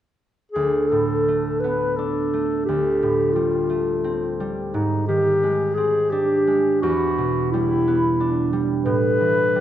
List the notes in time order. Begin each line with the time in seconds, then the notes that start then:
0.52 D2 G#4
0.89 A2 A4
1.28 A3
1.60 B3 B4
1.96 D4 A4
2.33 A3
2.65 D2 G4
3.03 A2
3.33 G3 F4
3.70 A3
4.04 C4
4.40 G3
4.73 G#2 D#4
5.08 D#3 G4
5.43 G#3
5.75 C4 G#4
6.10 D4 G4
6.47 G#3
6.82 E2 F#4
7.18 B2
7.52 G3 E4
7.88 B3
8.20 D4
8.53 G3
8.85 A2 B4
9.21 E3
9.56 G3